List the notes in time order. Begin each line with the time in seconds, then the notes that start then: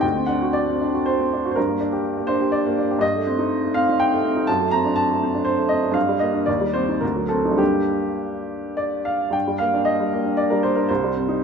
0.01 D2 G5
0.15 C4
0.26 D4 F#5
0.42 F#4
0.53 D5
0.68 C4
0.81 D4
0.94 F#4
1.06 C5
1.21 C4
1.33 D4
1.45 F#4
1.51 C5
1.55 G2 A#4
1.69 A#3
1.80 D4
1.93 G4
2.17 A#3
2.27 D4 C5
2.41 G4
2.52 D5
2.66 A#3
2.78 D4
2.91 G4
2.99 G2 D#5
3.16 A3
3.27 C4
3.39 D#4
3.64 A3
3.74 C4 F5
3.89 D#4
4.00 G5
4.13 A3
4.24 C4
4.36 D#4
4.47 F#2 A5
4.61 A3
4.71 C4 A#5
4.85 D4
4.96 A5
5.11 A3
5.23 C4
5.35 D4
5.45 C5
5.59 A3
5.69 C4 D#5
5.83 D4
5.92 G2 F5
6.09 G3
6.19 A#3 D#5
6.34 D4
6.46 D#2 D5
6.61 G3
6.73 C4 C5
6.89 D#4
7.01 D2 A#4
7.16 F#3
7.29 C4 A4
7.45 D#4
7.51 G2
7.56 G3 A#3 D4 G4
8.77 D5
9.05 F5
9.31 G2 G5
9.47 G3
9.58 A#3 F5
9.74 D4
9.85 D#5
10.00 G3
10.13 A#3
10.26 D4
10.37 D5
10.50 G3 A#4
10.63 A#3 C5
10.76 D4 A#4
10.89 C2 C5
11.04 G3
11.17 C4
11.29 D#4